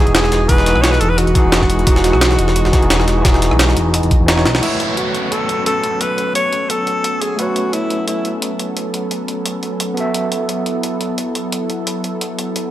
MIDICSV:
0, 0, Header, 1, 7, 480
1, 0, Start_track
1, 0, Tempo, 344828
1, 683, Time_signature, 4, 2, 24, 8
1, 17688, End_track
2, 0, Start_track
2, 0, Title_t, "Alto saxophone"
2, 0, Program_c, 0, 65
2, 0, Note_on_c, 0, 68, 104
2, 196, Note_off_c, 0, 68, 0
2, 204, Note_on_c, 0, 68, 101
2, 685, Note_on_c, 0, 71, 107
2, 706, Note_off_c, 0, 68, 0
2, 1138, Note_on_c, 0, 73, 91
2, 1159, Note_off_c, 0, 71, 0
2, 1270, Note_on_c, 0, 71, 98
2, 1291, Note_off_c, 0, 73, 0
2, 1391, Note_on_c, 0, 69, 92
2, 1412, Note_off_c, 0, 71, 0
2, 1524, Note_on_c, 0, 71, 94
2, 1545, Note_off_c, 0, 69, 0
2, 1646, Note_on_c, 0, 66, 108
2, 1667, Note_off_c, 0, 71, 0
2, 5965, Note_off_c, 0, 66, 0
2, 6447, Note_on_c, 0, 64, 77
2, 6925, Note_on_c, 0, 66, 82
2, 6946, Note_off_c, 0, 64, 0
2, 7407, Note_on_c, 0, 69, 89
2, 7428, Note_off_c, 0, 66, 0
2, 7878, Note_off_c, 0, 69, 0
2, 7886, Note_on_c, 0, 69, 89
2, 8365, Note_on_c, 0, 71, 94
2, 8386, Note_off_c, 0, 69, 0
2, 8836, Note_off_c, 0, 71, 0
2, 8844, Note_on_c, 0, 73, 104
2, 9323, Note_on_c, 0, 69, 96
2, 9344, Note_off_c, 0, 73, 0
2, 10043, Note_on_c, 0, 68, 85
2, 10064, Note_off_c, 0, 69, 0
2, 10284, Note_on_c, 0, 66, 87
2, 10305, Note_off_c, 0, 68, 0
2, 10763, Note_on_c, 0, 64, 85
2, 10784, Note_off_c, 0, 66, 0
2, 11235, Note_off_c, 0, 64, 0
2, 11244, Note_on_c, 0, 64, 76
2, 11690, Note_off_c, 0, 64, 0
2, 17688, End_track
3, 0, Start_track
3, 0, Title_t, "Tine electric piano"
3, 0, Program_c, 1, 4
3, 0, Control_c, 1, 64, 127
3, 0, Note_on_c, 1, 52, 79
3, 0, Note_on_c, 1, 63, 76
3, 0, Note_on_c, 1, 66, 77
3, 0, Note_on_c, 1, 68, 90
3, 0, Note_on_c, 1, 75, 75
3, 641, Note_off_c, 1, 52, 0
3, 641, Note_on_c, 1, 52, 78
3, 670, Note_off_c, 1, 63, 0
3, 670, Note_on_c, 1, 63, 71
3, 697, Note_off_c, 1, 66, 0
3, 697, Note_on_c, 1, 66, 74
3, 726, Note_off_c, 1, 68, 0
3, 726, Note_on_c, 1, 68, 86
3, 1835, Note_off_c, 1, 52, 0
3, 1850, Note_off_c, 1, 63, 0
3, 1862, Note_on_c, 1, 52, 84
3, 1864, Note_off_c, 1, 66, 0
3, 1877, Note_on_c, 1, 63, 76
3, 1878, Note_off_c, 1, 68, 0
3, 1890, Note_on_c, 1, 66, 78
3, 1905, Note_on_c, 1, 68, 93
3, 2003, Note_off_c, 1, 52, 0
3, 2010, Note_off_c, 1, 63, 0
3, 2017, Note_off_c, 1, 66, 0
3, 2024, Note_off_c, 1, 68, 0
3, 2561, Note_on_c, 1, 52, 84
3, 2589, Note_on_c, 1, 63, 79
3, 2618, Note_on_c, 1, 66, 78
3, 2645, Note_on_c, 1, 68, 91
3, 3756, Note_off_c, 1, 52, 0
3, 3770, Note_off_c, 1, 63, 0
3, 3781, Note_on_c, 1, 52, 84
3, 3784, Note_off_c, 1, 66, 0
3, 3795, Note_on_c, 1, 63, 77
3, 3798, Note_off_c, 1, 68, 0
3, 3810, Note_on_c, 1, 66, 80
3, 3824, Note_on_c, 1, 68, 92
3, 3922, Note_off_c, 1, 52, 0
3, 3929, Note_off_c, 1, 63, 0
3, 3937, Note_off_c, 1, 66, 0
3, 3944, Note_off_c, 1, 68, 0
3, 4480, Note_on_c, 1, 52, 83
3, 4510, Note_on_c, 1, 63, 75
3, 4537, Note_on_c, 1, 66, 73
3, 4566, Note_on_c, 1, 68, 90
3, 5675, Note_off_c, 1, 52, 0
3, 5690, Note_off_c, 1, 63, 0
3, 5704, Note_off_c, 1, 66, 0
3, 5718, Note_off_c, 1, 68, 0
3, 5941, Note_on_c, 1, 52, 83
3, 5955, Note_on_c, 1, 63, 73
3, 5970, Note_on_c, 1, 66, 75
3, 5984, Note_on_c, 1, 73, 94
3, 6400, Note_on_c, 1, 57, 63
3, 6406, Note_off_c, 1, 52, 0
3, 6412, Note_off_c, 1, 66, 0
3, 6413, Note_off_c, 1, 63, 0
3, 6427, Note_off_c, 1, 73, 0
3, 6429, Note_on_c, 1, 66, 61
3, 6457, Note_on_c, 1, 71, 63
3, 6459, Control_c, 1, 64, 0
3, 6471, Note_off_c, 1, 75, 0
3, 6486, Note_on_c, 1, 73, 76
3, 6707, Control_c, 1, 64, 127
3, 10225, Note_off_c, 1, 57, 0
3, 10242, Note_on_c, 1, 57, 67
3, 10249, Note_off_c, 1, 66, 0
3, 10264, Note_off_c, 1, 71, 0
3, 10270, Note_on_c, 1, 66, 61
3, 10278, Note_off_c, 1, 73, 0
3, 10298, Note_on_c, 1, 71, 61
3, 10327, Note_on_c, 1, 73, 72
3, 13836, Note_off_c, 1, 57, 0
3, 13841, Note_on_c, 1, 59, 69
3, 13850, Note_off_c, 1, 66, 0
3, 13864, Note_off_c, 1, 71, 0
3, 13869, Note_on_c, 1, 66, 59
3, 13879, Note_off_c, 1, 73, 0
3, 13898, Note_on_c, 1, 69, 63
3, 13904, Control_c, 1, 64, 0
3, 13926, Note_on_c, 1, 76, 75
3, 14149, Control_c, 1, 64, 127
3, 17663, Note_off_c, 1, 59, 0
3, 17688, Note_off_c, 1, 66, 0
3, 17688, Note_off_c, 1, 69, 0
3, 17688, Note_off_c, 1, 76, 0
3, 17688, End_track
4, 0, Start_track
4, 0, Title_t, "Analog synth pad"
4, 0, Program_c, 2, 89
4, 0, Note_on_c, 2, 52, 78
4, 0, Note_on_c, 2, 56, 73
4, 0, Note_on_c, 2, 66, 90
4, 0, Note_on_c, 2, 75, 71
4, 6388, Note_off_c, 2, 52, 0
4, 6388, Note_off_c, 2, 56, 0
4, 6388, Note_off_c, 2, 66, 0
4, 6388, Note_off_c, 2, 75, 0
4, 6444, Note_on_c, 2, 59, 67
4, 6444, Note_on_c, 2, 61, 67
4, 6445, Note_on_c, 2, 54, 74
4, 6445, Note_on_c, 2, 69, 82
4, 13828, Note_off_c, 2, 61, 0
4, 13882, Note_on_c, 2, 64, 70
4, 17688, Note_off_c, 2, 54, 0
4, 17688, Note_off_c, 2, 59, 0
4, 17688, Note_off_c, 2, 64, 0
4, 17688, Note_off_c, 2, 69, 0
4, 17688, End_track
5, 0, Start_track
5, 0, Title_t, "Analog synth bass"
5, 0, Program_c, 3, 38
5, 92, Note_on_c, 3, 28, 95
5, 426, Note_off_c, 3, 28, 0
5, 443, Note_on_c, 3, 28, 74
5, 661, Note_off_c, 3, 28, 0
5, 684, Note_on_c, 3, 28, 98
5, 1032, Note_off_c, 3, 28, 0
5, 1051, Note_on_c, 3, 35, 97
5, 1385, Note_off_c, 3, 35, 0
5, 1403, Note_on_c, 3, 28, 87
5, 1752, Note_off_c, 3, 28, 0
5, 1772, Note_on_c, 3, 28, 93
5, 1872, Note_off_c, 3, 28, 0
5, 2013, Note_on_c, 3, 28, 103
5, 2346, Note_off_c, 3, 28, 0
5, 2363, Note_on_c, 3, 28, 76
5, 2581, Note_off_c, 3, 28, 0
5, 2603, Note_on_c, 3, 28, 99
5, 2952, Note_off_c, 3, 28, 0
5, 2972, Note_on_c, 3, 35, 94
5, 3306, Note_off_c, 3, 35, 0
5, 3324, Note_on_c, 3, 28, 87
5, 3672, Note_off_c, 3, 28, 0
5, 3691, Note_on_c, 3, 28, 97
5, 3792, Note_off_c, 3, 28, 0
5, 3932, Note_on_c, 3, 28, 100
5, 4265, Note_off_c, 3, 28, 0
5, 4283, Note_on_c, 3, 28, 79
5, 4501, Note_off_c, 3, 28, 0
5, 4523, Note_on_c, 3, 28, 96
5, 4872, Note_off_c, 3, 28, 0
5, 4892, Note_on_c, 3, 35, 95
5, 5226, Note_off_c, 3, 35, 0
5, 5243, Note_on_c, 3, 28, 88
5, 5592, Note_off_c, 3, 28, 0
5, 5612, Note_on_c, 3, 28, 95
5, 5712, Note_off_c, 3, 28, 0
5, 5853, Note_on_c, 3, 28, 106
5, 6204, Note_on_c, 3, 35, 76
5, 6224, Note_off_c, 3, 28, 0
5, 6421, Note_off_c, 3, 35, 0
5, 17688, End_track
6, 0, Start_track
6, 0, Title_t, "Downlifter"
6, 0, Program_c, 4, 103
6, 6443, Note_on_c, 4, 60, 64
6, 10283, Note_off_c, 4, 60, 0
6, 17688, End_track
7, 0, Start_track
7, 0, Title_t, "Drums"
7, 93, Note_on_c, 9, 42, 43
7, 204, Note_off_c, 9, 42, 0
7, 204, Note_on_c, 9, 38, 117
7, 204, Note_on_c, 9, 42, 90
7, 333, Note_off_c, 9, 38, 0
7, 333, Note_on_c, 9, 38, 35
7, 334, Note_on_c, 9, 37, 42
7, 344, Note_off_c, 9, 42, 0
7, 444, Note_off_c, 9, 38, 0
7, 444, Note_on_c, 9, 38, 52
7, 444, Note_on_c, 9, 42, 68
7, 445, Note_off_c, 9, 42, 0
7, 445, Note_on_c, 9, 42, 58
7, 473, Note_off_c, 9, 37, 0
7, 583, Note_off_c, 9, 38, 0
7, 584, Note_off_c, 9, 42, 0
7, 683, Note_on_c, 9, 42, 94
7, 684, Note_on_c, 9, 36, 107
7, 684, Note_on_c, 9, 46, 78
7, 813, Note_on_c, 9, 38, 47
7, 822, Note_off_c, 9, 42, 0
7, 823, Note_off_c, 9, 36, 0
7, 823, Note_off_c, 9, 46, 0
7, 923, Note_off_c, 9, 38, 0
7, 923, Note_on_c, 9, 38, 41
7, 923, Note_on_c, 9, 42, 65
7, 1052, Note_on_c, 9, 37, 42
7, 1063, Note_off_c, 9, 38, 0
7, 1063, Note_off_c, 9, 42, 0
7, 1163, Note_on_c, 9, 38, 105
7, 1163, Note_on_c, 9, 42, 89
7, 1164, Note_off_c, 9, 38, 0
7, 1164, Note_off_c, 9, 42, 0
7, 1164, Note_on_c, 9, 38, 109
7, 1164, Note_on_c, 9, 42, 82
7, 1191, Note_off_c, 9, 37, 0
7, 1292, Note_off_c, 9, 38, 0
7, 1292, Note_on_c, 9, 38, 41
7, 1303, Note_off_c, 9, 42, 0
7, 1402, Note_on_c, 9, 42, 65
7, 1403, Note_off_c, 9, 42, 0
7, 1403, Note_on_c, 9, 42, 61
7, 1432, Note_off_c, 9, 38, 0
7, 1542, Note_off_c, 9, 42, 0
7, 1642, Note_on_c, 9, 37, 30
7, 1642, Note_on_c, 9, 42, 84
7, 1643, Note_off_c, 9, 42, 0
7, 1643, Note_on_c, 9, 42, 83
7, 1772, Note_off_c, 9, 42, 0
7, 1772, Note_on_c, 9, 42, 41
7, 1781, Note_off_c, 9, 37, 0
7, 1881, Note_off_c, 9, 42, 0
7, 1881, Note_on_c, 9, 42, 63
7, 1883, Note_off_c, 9, 42, 0
7, 1883, Note_on_c, 9, 36, 99
7, 1883, Note_on_c, 9, 42, 67
7, 2022, Note_off_c, 9, 42, 0
7, 2023, Note_off_c, 9, 36, 0
7, 2120, Note_on_c, 9, 38, 110
7, 2120, Note_on_c, 9, 42, 91
7, 2123, Note_off_c, 9, 38, 0
7, 2123, Note_off_c, 9, 42, 0
7, 2123, Note_on_c, 9, 38, 110
7, 2123, Note_on_c, 9, 42, 84
7, 2250, Note_off_c, 9, 38, 0
7, 2250, Note_on_c, 9, 38, 34
7, 2253, Note_on_c, 9, 36, 56
7, 2263, Note_off_c, 9, 42, 0
7, 2361, Note_on_c, 9, 42, 65
7, 2363, Note_off_c, 9, 42, 0
7, 2363, Note_on_c, 9, 42, 65
7, 2389, Note_off_c, 9, 38, 0
7, 2392, Note_off_c, 9, 36, 0
7, 2492, Note_off_c, 9, 42, 0
7, 2492, Note_on_c, 9, 42, 44
7, 2600, Note_off_c, 9, 42, 0
7, 2600, Note_on_c, 9, 42, 94
7, 2603, Note_off_c, 9, 42, 0
7, 2603, Note_on_c, 9, 36, 107
7, 2603, Note_on_c, 9, 42, 85
7, 2732, Note_on_c, 9, 38, 58
7, 2742, Note_off_c, 9, 42, 0
7, 2743, Note_off_c, 9, 36, 0
7, 2841, Note_on_c, 9, 42, 67
7, 2843, Note_off_c, 9, 38, 0
7, 2843, Note_off_c, 9, 42, 0
7, 2843, Note_on_c, 9, 38, 48
7, 2843, Note_on_c, 9, 42, 64
7, 2970, Note_on_c, 9, 37, 42
7, 2982, Note_off_c, 9, 38, 0
7, 2982, Note_off_c, 9, 42, 0
7, 3081, Note_on_c, 9, 38, 108
7, 3081, Note_on_c, 9, 42, 97
7, 3083, Note_off_c, 9, 38, 0
7, 3083, Note_off_c, 9, 42, 0
7, 3083, Note_on_c, 9, 38, 109
7, 3083, Note_on_c, 9, 42, 85
7, 3109, Note_off_c, 9, 37, 0
7, 3211, Note_off_c, 9, 38, 0
7, 3211, Note_on_c, 9, 38, 56
7, 3222, Note_off_c, 9, 42, 0
7, 3321, Note_on_c, 9, 42, 62
7, 3323, Note_off_c, 9, 42, 0
7, 3323, Note_on_c, 9, 42, 67
7, 3351, Note_off_c, 9, 38, 0
7, 3451, Note_on_c, 9, 38, 47
7, 3462, Note_off_c, 9, 42, 0
7, 3561, Note_on_c, 9, 42, 90
7, 3563, Note_off_c, 9, 42, 0
7, 3563, Note_on_c, 9, 42, 83
7, 3591, Note_off_c, 9, 38, 0
7, 3692, Note_on_c, 9, 38, 48
7, 3702, Note_off_c, 9, 42, 0
7, 3802, Note_off_c, 9, 38, 0
7, 3802, Note_on_c, 9, 38, 47
7, 3802, Note_on_c, 9, 42, 67
7, 3803, Note_on_c, 9, 36, 92
7, 3931, Note_off_c, 9, 42, 0
7, 3931, Note_on_c, 9, 42, 44
7, 3941, Note_off_c, 9, 38, 0
7, 3942, Note_off_c, 9, 36, 0
7, 4041, Note_off_c, 9, 42, 0
7, 4041, Note_on_c, 9, 38, 113
7, 4041, Note_on_c, 9, 42, 95
7, 4042, Note_off_c, 9, 38, 0
7, 4042, Note_off_c, 9, 42, 0
7, 4042, Note_on_c, 9, 38, 109
7, 4042, Note_on_c, 9, 42, 83
7, 4171, Note_on_c, 9, 37, 45
7, 4172, Note_off_c, 9, 38, 0
7, 4172, Note_on_c, 9, 38, 36
7, 4182, Note_off_c, 9, 42, 0
7, 4282, Note_on_c, 9, 42, 68
7, 4284, Note_off_c, 9, 38, 0
7, 4284, Note_off_c, 9, 42, 0
7, 4284, Note_on_c, 9, 38, 43
7, 4284, Note_on_c, 9, 42, 61
7, 4310, Note_off_c, 9, 37, 0
7, 4423, Note_off_c, 9, 38, 0
7, 4423, Note_off_c, 9, 42, 0
7, 4522, Note_on_c, 9, 42, 94
7, 4523, Note_off_c, 9, 42, 0
7, 4523, Note_on_c, 9, 36, 114
7, 4523, Note_on_c, 9, 38, 101
7, 4523, Note_on_c, 9, 42, 78
7, 4653, Note_off_c, 9, 38, 0
7, 4653, Note_on_c, 9, 38, 47
7, 4662, Note_off_c, 9, 36, 0
7, 4662, Note_off_c, 9, 42, 0
7, 4762, Note_on_c, 9, 42, 69
7, 4763, Note_off_c, 9, 38, 0
7, 4763, Note_off_c, 9, 42, 0
7, 4763, Note_on_c, 9, 38, 44
7, 4763, Note_on_c, 9, 42, 69
7, 4891, Note_on_c, 9, 37, 46
7, 4902, Note_off_c, 9, 38, 0
7, 4902, Note_off_c, 9, 42, 0
7, 5002, Note_on_c, 9, 38, 116
7, 5002, Note_on_c, 9, 42, 93
7, 5003, Note_off_c, 9, 38, 0
7, 5003, Note_off_c, 9, 42, 0
7, 5003, Note_on_c, 9, 38, 106
7, 5003, Note_on_c, 9, 42, 82
7, 5031, Note_off_c, 9, 37, 0
7, 5133, Note_off_c, 9, 38, 0
7, 5133, Note_on_c, 9, 38, 40
7, 5142, Note_off_c, 9, 42, 0
7, 5242, Note_on_c, 9, 42, 68
7, 5243, Note_off_c, 9, 42, 0
7, 5243, Note_on_c, 9, 42, 68
7, 5272, Note_off_c, 9, 38, 0
7, 5382, Note_off_c, 9, 42, 0
7, 5482, Note_on_c, 9, 37, 36
7, 5482, Note_on_c, 9, 42, 96
7, 5612, Note_off_c, 9, 42, 0
7, 5612, Note_on_c, 9, 42, 44
7, 5621, Note_off_c, 9, 37, 0
7, 5722, Note_off_c, 9, 42, 0
7, 5722, Note_on_c, 9, 42, 65
7, 5723, Note_on_c, 9, 36, 99
7, 5862, Note_off_c, 9, 42, 0
7, 5863, Note_off_c, 9, 36, 0
7, 5962, Note_on_c, 9, 38, 109
7, 5962, Note_on_c, 9, 42, 83
7, 6091, Note_off_c, 9, 38, 0
7, 6091, Note_on_c, 9, 38, 51
7, 6102, Note_off_c, 9, 42, 0
7, 6201, Note_off_c, 9, 38, 0
7, 6201, Note_on_c, 9, 38, 77
7, 6201, Note_on_c, 9, 42, 72
7, 6203, Note_off_c, 9, 42, 0
7, 6203, Note_on_c, 9, 42, 67
7, 6330, Note_off_c, 9, 38, 0
7, 6330, Note_on_c, 9, 38, 76
7, 6332, Note_off_c, 9, 42, 0
7, 6332, Note_on_c, 9, 42, 42
7, 6441, Note_off_c, 9, 42, 0
7, 6441, Note_on_c, 9, 42, 81
7, 6441, Note_on_c, 9, 49, 77
7, 6469, Note_off_c, 9, 38, 0
7, 6581, Note_off_c, 9, 42, 0
7, 6581, Note_off_c, 9, 49, 0
7, 6681, Note_on_c, 9, 42, 61
7, 6820, Note_off_c, 9, 42, 0
7, 6922, Note_on_c, 9, 42, 82
7, 7061, Note_off_c, 9, 42, 0
7, 7162, Note_on_c, 9, 42, 55
7, 7302, Note_off_c, 9, 42, 0
7, 7403, Note_on_c, 9, 42, 85
7, 7542, Note_off_c, 9, 42, 0
7, 7644, Note_on_c, 9, 42, 58
7, 7783, Note_off_c, 9, 42, 0
7, 7883, Note_on_c, 9, 42, 85
7, 8022, Note_off_c, 9, 42, 0
7, 8123, Note_on_c, 9, 42, 61
7, 8262, Note_off_c, 9, 42, 0
7, 8362, Note_on_c, 9, 42, 81
7, 8501, Note_off_c, 9, 42, 0
7, 8603, Note_on_c, 9, 42, 60
7, 8742, Note_off_c, 9, 42, 0
7, 8843, Note_on_c, 9, 42, 82
7, 8982, Note_off_c, 9, 42, 0
7, 9083, Note_on_c, 9, 42, 55
7, 9223, Note_off_c, 9, 42, 0
7, 9324, Note_on_c, 9, 42, 78
7, 9463, Note_off_c, 9, 42, 0
7, 9563, Note_on_c, 9, 42, 58
7, 9703, Note_off_c, 9, 42, 0
7, 9803, Note_on_c, 9, 42, 86
7, 9943, Note_off_c, 9, 42, 0
7, 10044, Note_on_c, 9, 42, 62
7, 10183, Note_off_c, 9, 42, 0
7, 10283, Note_on_c, 9, 42, 83
7, 10422, Note_off_c, 9, 42, 0
7, 10523, Note_on_c, 9, 42, 55
7, 10662, Note_off_c, 9, 42, 0
7, 10763, Note_on_c, 9, 42, 76
7, 10902, Note_off_c, 9, 42, 0
7, 11002, Note_on_c, 9, 42, 52
7, 11142, Note_off_c, 9, 42, 0
7, 11242, Note_on_c, 9, 42, 72
7, 11381, Note_off_c, 9, 42, 0
7, 11482, Note_on_c, 9, 42, 56
7, 11622, Note_off_c, 9, 42, 0
7, 11722, Note_on_c, 9, 42, 83
7, 11862, Note_off_c, 9, 42, 0
7, 11964, Note_on_c, 9, 42, 57
7, 12103, Note_off_c, 9, 42, 0
7, 12202, Note_on_c, 9, 42, 77
7, 12341, Note_off_c, 9, 42, 0
7, 12443, Note_on_c, 9, 42, 59
7, 12582, Note_off_c, 9, 42, 0
7, 12682, Note_on_c, 9, 42, 76
7, 12821, Note_off_c, 9, 42, 0
7, 12922, Note_on_c, 9, 42, 51
7, 13061, Note_off_c, 9, 42, 0
7, 13162, Note_on_c, 9, 42, 76
7, 13301, Note_off_c, 9, 42, 0
7, 13401, Note_on_c, 9, 42, 54
7, 13541, Note_off_c, 9, 42, 0
7, 13642, Note_on_c, 9, 42, 81
7, 13781, Note_off_c, 9, 42, 0
7, 13882, Note_on_c, 9, 42, 57
7, 14021, Note_off_c, 9, 42, 0
7, 14121, Note_on_c, 9, 42, 78
7, 14260, Note_off_c, 9, 42, 0
7, 14362, Note_on_c, 9, 42, 59
7, 14501, Note_off_c, 9, 42, 0
7, 14601, Note_on_c, 9, 42, 78
7, 14740, Note_off_c, 9, 42, 0
7, 14841, Note_on_c, 9, 42, 53
7, 14980, Note_off_c, 9, 42, 0
7, 15081, Note_on_c, 9, 42, 78
7, 15221, Note_off_c, 9, 42, 0
7, 15321, Note_on_c, 9, 42, 53
7, 15460, Note_off_c, 9, 42, 0
7, 15561, Note_on_c, 9, 42, 81
7, 15701, Note_off_c, 9, 42, 0
7, 15802, Note_on_c, 9, 42, 56
7, 15941, Note_off_c, 9, 42, 0
7, 16042, Note_on_c, 9, 42, 82
7, 16181, Note_off_c, 9, 42, 0
7, 16281, Note_on_c, 9, 42, 57
7, 16420, Note_off_c, 9, 42, 0
7, 16521, Note_on_c, 9, 42, 85
7, 16660, Note_off_c, 9, 42, 0
7, 16761, Note_on_c, 9, 42, 58
7, 16900, Note_off_c, 9, 42, 0
7, 17000, Note_on_c, 9, 42, 76
7, 17140, Note_off_c, 9, 42, 0
7, 17241, Note_on_c, 9, 42, 57
7, 17380, Note_off_c, 9, 42, 0
7, 17481, Note_on_c, 9, 42, 82
7, 17620, Note_off_c, 9, 42, 0
7, 17688, End_track
0, 0, End_of_file